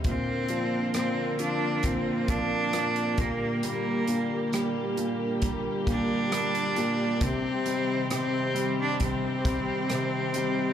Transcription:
<<
  \new Staff \with { instrumentName = "Steel-string acoustic guitar" } { \time 4/4 \key bes \mixolydian \tempo 4 = 67 bes,8 d'8 <c' d' bes'>4 c'4 d'8 bes,8 | bes,8 d'8 <bes d' g'>4 bes4 d'8 <bes d' g'>8 | c8 ees'8 <c' ees' g'>4 c'4 ees'8 <c' ees' g'>8 | }
  \new Staff \with { instrumentName = "Cello" } { \time 4/4 \key bes \mixolydian c'4 c'8 d'8 c'8 d'4 bes8 | bes4 r4. d'4. | c'4 c'8. d'16 c'2 | }
  \new Staff \with { instrumentName = "String section" } { \time 4/4 \key bes \mixolydian << { <bes f'>2.~ <bes f'>8 <g g'>8~ | <g g'>1~ | <g g'>1 | } \\ { <d c'>2.~ <d c'>8 d8~ | d1 | <ees c'>1 | } >> }
  \new Staff \with { instrumentName = "Grand piano" } { \clef bass \time 4/4 \key bes \mixolydian bes,8 f8 bes,8 f8 bes,8 f8 bes,8 bes,8 | g8 bes,8 g8 bes,8 g8 bes,8 g8 bes,8 | c8 g8 c8 g8 c8 g8 c8 g8 | }
  \new DrumStaff \with { instrumentName = "Drums" } \drummode { \time 4/4 <hh bd>8 hh8 <hh ss>8 hh8 <hh bd>8 <hh bd>8 <hh ss>16 hh16 <hh bd>8 | hh8 hh8 <hh ss>8 hh8 <hh bd>8 <hh bd>8 <hh ss>16 hh16 hh8 | <hh bd>8 hh8 <hh ss>8 hh8 <hh bd>8 <hh bd>8 <hh ss>8 hh8 | }
>>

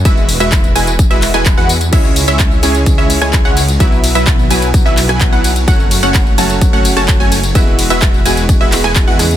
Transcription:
<<
  \new Staff \with { instrumentName = "Synth pluck" } { \time 4/4 \key e \major \tempo 4 = 128 e''8. e''8. gis''8 r16 e''8 gis''8 fis''8 r16 | e''8. e''8. gis''8 r16 e''8 gis''8 fis''8 r16 | e''8. e''8. gis''8 r16 e''8 gis''8 fis''8 r16 | fis''8. fis''8. a''8 r16 fis''8 a''8 gis''8 r16 |
e''8. e''8. gis''8 r16 e''8 gis''8 fis''8 r16 | }
  \new Staff \with { instrumentName = "Supersaw synth" } { \time 4/4 \key e \major <gis e' fis' b' e''>8. <gis e' fis' b' e''>8. <gis e' fis' b' gis''>8 r16 <gis e' fis' b' e''>8 <gis e' fis' b' gis''>8 <gis e' fis' b' fis''>8 r16 | <gis cis' e' cis'' e''>8. <gis cis' e' cis'' e''>8. <gis cis' e' cis'' gis''>8 r16 <gis cis' e' cis'' e''>8 <gis cis' e' cis'' gis''>8 <gis cis' e' cis'' fis''>8 r16 | <fis b e' b' e''>8. <fis b e' b' e''>8. <fis b e' b' gis''>8 r16 <fis b e' b' e''>8 <fis b e' b' gis''>8 <fis b e' b' fis''>8 r16 | <a cis' fis' cis'' fis''>8. <a cis' fis' cis'' fis''>8. <a cis' fis' cis'' a''>8 r16 <a cis' fis' cis'' fis''>8 <a cis' fis' cis'' a''>8 <a cis' fis' cis'' gis''>8 r16 |
<gis e' fis' b' e''>8. <gis e' fis' b' e''>8. <gis e' fis' b' gis''>8 r16 <gis e' fis' b' e''>8 <gis e' fis' b' gis''>8 <gis e' fis' b' fis''>8 r16 | }
  \new Staff \with { instrumentName = "Grand piano" } { \time 4/4 \key e \major r1 | <cis gis cis' e' gis'>4. <cis gis cis' e' gis'>8 r2 | <b, fis b e' fis'>4. <b, fis b e' fis'>4~ <b, fis b e' fis'>16 <b, fis b e' fis'>4~ <b, fis b e' fis'>16 | <fis a cis' fis'>4. <fis a cis' fis'>8 r2 |
<gis b e' fis'>4. <gis b e' fis'>4 <gis b e' gis'>16 r8. <cis gis b e' gis'>8 | }
  \new Staff \with { instrumentName = "Detuned saw bass" } { \clef bass \time 4/4 \key e \major e,,8. e,,8. e,,8. e,,8 e,,8 e,8. | cis,8. cis,8. cis,8. cis,8 cis,8 cis,8. | b,,8. b,,8. b,,8. b,,8 b,,8 b,,8. | fis,,8. fis,,8. fis,,8. fis,,8 fis,,8 fis,,8. |
e,,8. e,,8. e,,8. e,,8 e,,8 e,8. | }
  \new DrumStaff \with { instrumentName = "Drums" } \drummode { \time 4/4 <hh bd tamb>16 tamb16 <hho tamb>16 <hh tamb>16 <hc hh bd tamb>16 <hh tamb>16 <hho tamb>16 <hh tamb>16 <hh bd tamb>16 <hh tamb>16 <hc hho tamb>16 <hh ss tamb>16 <hc hh bd tamb>16 tamb16 <hho tamb>16 <hh tamb>16 | <cymc hh bd cymr tamb>16 tamb16 <hho cymr tamb>16 <hh tamb>16 <hc hh bd cymr tamb>16 tamb16 <hho cymr tamb>16 <hh tamb>16 <hh bd cymr tamb>16 tamb16 <hho cymr tamb>16 <hh ss tamb>16 <hc hh bd cymr tamb>16 tamb16 <hho cymr tamb>16 <hh tamb>16 | <hh bd cymr tamb>16 tamb16 <hho cymr tamb>16 <hh tamb>16 <hc hh bd cymr tamb>16 tamb16 <hho cymr tamb>16 <hh tamb>16 <hh bd cymr tamb>16 tamb16 <hc hho cymr tamb>16 <hh ss tamb>16 <hc hh bd cymr tamb>16 tamb16 <hho cymr tamb>16 <hh tamb>16 | <hh bd cymr tamb>16 tamb16 <hho cymr tamb>16 <hh tamb>16 <hc hh bd cymr tamb>16 tamb16 <hho cymr tamb>16 <hh tamb>16 <hh bd cymr tamb>16 tamb16 <hho cymr tamb>16 <hh ss tamb>16 <hc hh bd cymr tamb>16 tamb16 <hho cymr tamb>16 <hh tamb>16 |
<hh bd cymr tamb>16 tamb16 <hho cymr tamb>16 <hh tamb>16 <hc hh bd cymr tamb>16 tamb16 <hho cymr tamb>16 <hh tamb>16 <hh bd cymr tamb>16 tamb16 <hc hho cymr tamb>16 <hh ss>16 <hc hh bd cymr tamb>16 tamb16 <hho cymr ss tamb>16 <hh tamb>16 | }
>>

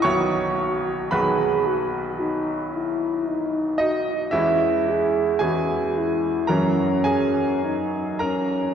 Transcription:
<<
  \new Staff \with { instrumentName = "French horn" } { \time 4/4 \key b \major \tempo 4 = 56 fis'4 gis'8 fis'8 dis'8 e'8 dis'8 fis'8 | e'8 gis'8 fis'8 e'8 cis'4 dis'8 cis'8 | }
  \new Staff \with { instrumentName = "Grand piano" } { \time 4/4 \key b \major <cis'' cis'''>4 <b' b''>2~ <b' b''>8 <dis' dis''>8 | <e' e''>4 <gis' gis''>4 <ais' ais''>8 <gis' gis''>4 <ais' ais''>8 | }
  \new Staff \with { instrumentName = "Grand piano" } { \clef bass \time 4/4 \key b \major <b,, dis fis b>4 <b,, dis fis b>2. | <e, e gis cis'>4 <e, e gis cis'>4 <fis, e fis cis'>2 | }
>>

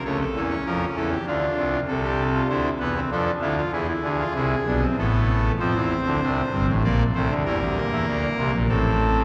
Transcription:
<<
  \new Staff \with { instrumentName = "Pipe organ" } { \time 3/4 \key a \phrygian \tempo 4 = 97 << { cis''16 a'8 cis''16 bes'8 a'16 g'16 f'4 | r4 c''8 b'8 a'8 f'8 | e'8 gis'4. a'4 | \key f \major c''2 d''8 c''8 |
bes'2 a'4 | } \\ { a8 cis'4. d'4 | a'16 g'8 f'16 e'8 b16 c'16 d'8 e'16 f'16 | gis'16 e'8 f'16 e'8 d'16 c'16 b4 | c'4 d'8 c'8 bes8 a8 |
g8 bes4. c'4 | } >> }
  \new Staff \with { instrumentName = "Pipe organ" } { \clef bass \time 3/4 \key a \phrygian <cis, cis>8 <e, e>8 <f, f>8 <e, e>8 <d, d>8 <c, c>8 | <c, c>4 <d, d>8 <e, e>8 <f, f>8 <d, d>8 | <e, e>8 <d, d>8 <c, c>8 <b,, b,>8 <a,, a,>4 | \key f \major <f, f>16 <e, e>8 <d, d>16 <c, c>8 <g,, g,>16 <a,, a,>16 <bes,, bes,>8 <c, c>16 <d, d>16 |
<e, e>16 <d, d>8 <e, e>16 <d, d>8 <c, c>16 <bes,, bes,>16 <a,, a,>4 | }
>>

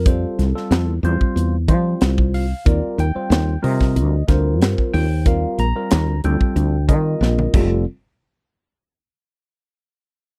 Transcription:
<<
  \new Staff \with { instrumentName = "Tine electric piano" } { \time 4/4 \key ees \lydian \tempo 4 = 92 << { a'2 r4. f''8 | d''8 g''4 ees''4 c''4 g''8 | f''8 bes''4 g''4 ees''4~ ees''16 r16 | r1 | } \\ { <g c' f' c''>8 r16 <g c' f' a'>8 r16 <g c' f' c''>8. r16 <g c' f' c''>4~ <g c' f' c''>16 r16 | <g c' f' bes'>8 r16 <g c' f' c''>8 r16 <g c' f' bes'>8. r16 <g c' f' bes'>4~ <g c' f' bes'>16 r16 | <g c' f' bes'>8 r16 <g c' f' bes'>8 r16 <g c' f' a'>8. r16 <g c' f' bes'>4 <g c' f' a'>8 | r1 | } >> }
  \new Staff \with { instrumentName = "Fretless electric bass" } { \clef bass \time 4/4 \key ees \lydian f,8 c,16 r16 f,16 e,16 e,16 r16 e,8 f8 c,4 | ees,16 r16 ees,16 r16 ees,8 c8 d,8 d,8 g,16 r16 ees,8~ | ees,8 bes,,16 r16 ees,16 d,16 d,16 r16 d,8 ees8 bes,,8 f,,8 | r1 | }
  \new DrumStaff \with { instrumentName = "Drums" } \drummode { \time 4/4 <hh bd>8 <hh sn>16 sn16 <hh sn>8 hh16 bd16 hh8 <hh bd>8 <hh sn>16 bd16 hho8 | <hh bd>8 hh8 <hh sn>8 hho16 <bd sn>16 hh8 <hh bd sn>8 <hh sn>16 bd16 hho8 | <hh bd>8 hh8 <hh sn>8 hh16 bd16 hh8 <hh bd>8 sn16 toml16 <cymc bd>8 | r4 r4 r4 r4 | }
>>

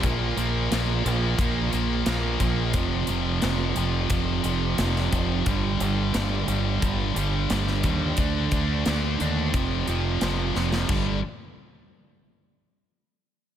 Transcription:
<<
  \new Staff \with { instrumentName = "Distorted electric guitar" } { \clef bass \time 4/4 \key g \minor \tempo 4 = 88 <bes, f bes>8 <bes, f bes>8 <bes, f bes>8 <bes, f bes>8 <bes, f bes>8 <bes, f bes>8 <bes, f bes>8 <bes, f bes>8 | <f, c f>8 <f, c f>8 <f, c f>8 <f, c f>8 <f, c f>8 <f, c f>8 <f, c f>8 <f, c f>8 | <g, d g>8 <g, d g>8 <g, d g>8 <g, d g>8 <g, d g>8 <g, d g>8 <g, d g>8 <g, d g>8 | <d a d'>8 <d a d'>8 <d a d'>8 <d a d'>8 <f, c f>8 <f, c f>8 <f, c f>8 <f, c f>8 |
<g, d g>8 r2. r8 | }
  \new Staff \with { instrumentName = "Distorted electric guitar" } { \clef bass \time 4/4 \key g \minor <bes, f bes>8 <bes, f bes>8 <bes, f bes>8 <bes, f bes>8 <bes, f bes>8 <bes, f bes>8 <bes, f bes>8 <bes, f bes>8 | <f, c f>8 <f, c f>8 <f, c f>8 <f, c f>8 <f, c f>8 <f, c f>8 <f, c f>8 <f, c f>8 | <g, d g>8 <g, d g>8 <g, d g>8 <g, d g>8 <g, d g>8 <g, d g>8 <g, d g>8 <g, d g>8 | <d a d'>8 <d a d'>8 <d a d'>8 <d a d'>8 <f, c f>8 <f, c f>8 <f, c f>8 <f, c f>8 |
<g, d g>8 r2. r8 | }
  \new Staff \with { instrumentName = "Fingered electric bass" } { \clef bass \time 4/4 \key g \minor bes,,8 bes,,8 bes,,8 bes,,8 bes,,8 bes,,8 bes,,8 bes,,8 | f,,8 f,,8 f,,8 f,,8 f,,8 f,,8 f,,8 f,,8 | g,,8 g,,8 g,,8 g,,8 g,,8 g,,8 g,,8 ees,8 | d,8 d,8 d,8 ees,8 f,,8 f,,8 f,,8 f,,8 |
g,,8 r2. r8 | }
  \new DrumStaff \with { instrumentName = "Drums" } \drummode { \time 4/4 <hh bd>8 hh8 <hh sn>8 hh8 <hh bd>8 hh8 <hh sn>8 <hh bd>8 | <hh bd>8 hh8 <hh sn>8 hh8 <hh bd>8 hh8 <hh sn>16 sn16 <hh bd>8 | <hh bd>8 hh8 <hh sn>8 hh8 <hh bd>8 hh8 <hh sn>16 sn16 <hh bd>8 | <hh bd>8 <hh bd>8 <hh sn>8 hh8 <hh bd>8 hh8 <hh sn>8 sn16 sn16 |
<cymc bd>4 r4 r4 r4 | }
>>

